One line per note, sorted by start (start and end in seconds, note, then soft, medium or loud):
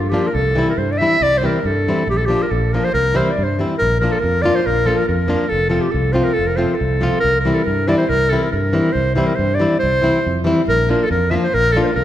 0.00 0.18 G2 medium
0.00 0.11 F4 medium
0.09 0.28 F3 medium
0.09 0.28 A#3 soft
0.09 0.29 G4 medium
0.14 0.29 D4 medium
0.14 0.29 F4 medium
0.27 0.36 A#4 medium
0.35 0.61 C2 medium
0.35 0.68 A4 loud
0.55 0.71 E3 medium
0.55 0.71 G3 soft
0.55 0.72 C4 medium
0.55 0.73 E4 medium
0.70 0.80 A#4 medium
0.78 1.04 G2 medium
0.78 0.93 C5 medium
0.92 1.00 D5 medium
0.98 1.16 E3 medium
0.98 1.16 G3 soft
0.98 1.16 C4 medium
0.98 1.24 E5 loud
1.02 1.16 E4 medium
1.21 1.47 C2 medium
1.21 1.39 D5 loud
1.38 1.47 C5 medium
1.42 1.58 E3 medium
1.42 1.58 G3 medium
1.42 1.59 C4 soft
1.42 1.59 E4 medium
1.42 1.68 A#4 medium
1.65 1.91 G2 medium
1.65 2.09 A4 medium
1.88 2.03 E3 medium
1.88 2.02 G3 medium
1.88 2.03 C4 medium
1.88 2.03 E4 medium
2.07 2.33 A#1 medium
2.07 2.19 G4 loud
2.18 2.27 A4 medium
2.26 2.44 F3 medium
2.26 2.45 A#3 soft
2.26 2.44 G4 loud
2.30 2.45 D4 medium
2.30 2.45 F4 medium
2.43 2.52 A#4 medium
2.51 2.77 A#1 medium
2.51 2.74 A4 medium
2.73 2.89 F3 medium
2.73 2.89 A#3 medium
2.73 2.89 D4 soft
2.73 2.89 F4 medium
2.73 2.86 A#4 medium
2.84 2.93 C5 medium
2.94 3.20 C2 medium
2.94 3.18 A#4 loud
3.14 3.30 E3 medium
3.14 3.30 G3 medium
3.14 3.31 C4 soft
3.14 3.31 E4 medium
3.14 3.33 C5 medium
3.31 3.45 D5 medium
3.38 3.64 G2 medium
3.44 3.58 C5 medium
3.59 3.74 E3 medium
3.59 3.74 G3 soft
3.59 3.75 C4 medium
3.59 3.75 E4 medium
3.78 4.07 A#1 medium
3.78 3.99 A#4 loud
4.00 4.17 F3 medium
4.00 4.18 A#3 medium
4.00 4.18 D4 medium
4.00 4.18 F4 medium
4.00 4.14 A#4 medium
4.12 4.21 A4 medium
4.19 4.43 A#4 medium
4.24 4.49 F2 medium
4.42 4.59 F3 medium
4.42 4.60 A#3 soft
4.42 4.60 D4 soft
4.42 4.60 F4 medium
4.42 4.57 D5 loud
4.55 4.67 C5 medium
4.66 4.92 A#1 medium
4.66 4.88 A#4 loud
4.85 5.02 F3 medium
4.85 5.02 A#3 medium
4.85 5.03 D4 soft
4.85 5.03 F4 medium
4.85 4.99 A4 medium
4.98 5.08 A#4 medium
5.08 5.35 F2 medium
5.08 5.50 A#4 medium
5.28 5.45 F3 medium
5.28 5.45 A#3 medium
5.28 5.45 D4 medium
5.28 5.46 F4 medium
5.49 5.78 F1 medium
5.49 5.69 A4 loud
5.69 5.87 F3 medium
5.69 5.87 A3 medium
5.69 5.88 C4 soft
5.69 5.88 F4 medium
5.69 5.84 A4 medium
5.82 5.93 G4 medium
5.92 6.21 C2 medium
5.92 6.14 A4 medium
6.13 6.30 F3 medium
6.13 6.31 A3 medium
6.13 6.31 C4 medium
6.13 6.31 F4 medium
6.13 6.25 C5 medium
6.24 6.35 A#4 medium
6.34 6.49 A4 medium
6.38 6.64 F1 medium
6.47 6.58 A#4 medium
6.56 6.74 F3 medium
6.56 6.74 A3 medium
6.56 6.74 C4 medium
6.56 6.74 F4 medium
6.56 6.76 C5 medium
6.75 7.20 A4 medium
6.81 7.07 C2 medium
7.01 7.17 F3 medium
7.01 7.18 A3 medium
7.01 7.18 C4 medium
7.01 7.18 F4 medium
7.20 7.40 A#4 loud
7.24 7.50 C2 medium
7.40 7.56 A#4 medium
7.45 7.61 E3 medium
7.45 7.61 G3 medium
7.45 7.62 C4 medium
7.45 7.62 E4 medium
7.54 7.65 A4 medium
7.64 7.93 G2 medium
7.64 7.90 A#4 medium
7.88 8.04 E3 medium
7.88 8.04 G3 medium
7.88 8.04 C4 medium
7.88 8.04 E4 medium
7.88 7.97 D5 medium
7.98 8.10 C5 medium
8.09 8.36 C2 medium
8.09 8.31 A#4 loud
8.30 8.47 E3 medium
8.30 8.47 G3 soft
8.30 8.47 C4 medium
8.30 8.48 E4 medium
8.30 8.44 A4 medium
8.43 8.51 A#4 medium
8.52 8.79 G2 medium
8.52 8.94 A#4 medium
8.73 8.89 E3 medium
8.73 8.89 G3 medium
8.73 8.89 C4 soft
8.73 8.90 E4 medium
8.92 9.21 C2 medium
8.92 9.14 C5 loud
9.15 9.32 E3 medium
9.15 9.32 G3 medium
9.15 9.33 C4 medium
9.15 9.33 E4 medium
9.15 9.28 C5 medium
9.26 9.37 A#4 medium
9.35 9.65 G2 medium
9.35 9.56 C5 medium
9.55 9.79 D5 medium
9.60 9.75 E3 medium
9.60 9.75 G3 soft
9.60 9.76 C4 medium
9.60 9.76 E4 medium
9.79 10.08 C2 medium
9.79 10.41 C5 loud
10.02 10.18 E3 medium
10.02 10.18 G3 soft
10.02 10.18 C4 medium
10.02 10.19 E4 medium
10.26 10.52 F2 medium
10.44 10.60 E3 medium
10.44 10.60 G3 medium
10.44 10.61 C4 medium
10.44 10.61 E4 medium
10.68 10.93 A#1 medium
10.68 10.88 A#4 loud
10.89 11.04 F3 medium
10.89 11.04 A#3 medium
10.89 11.05 D4 soft
10.89 11.05 F4 medium
10.89 11.05 A#4 medium
11.03 11.11 A4 medium
11.11 11.36 F2 medium
11.11 11.32 A#4 medium
11.31 11.46 F3 medium
11.31 11.47 A#3 medium
11.31 11.48 D4 medium
11.31 11.47 F4 medium
11.31 11.34 E5 medium
11.44 11.55 C5 medium
11.54 11.79 A#1 medium
11.54 11.74 A#4 loud
11.72 11.90 F3 soft
11.72 11.90 A#3 medium
11.72 11.90 D4 medium
11.72 11.82 A4 medium
11.77 11.90 F4 medium
11.83 11.95 A#4 medium
11.83 11.88 C5 medium
11.95 12.04 C2 medium
11.95 12.04 A#4 medium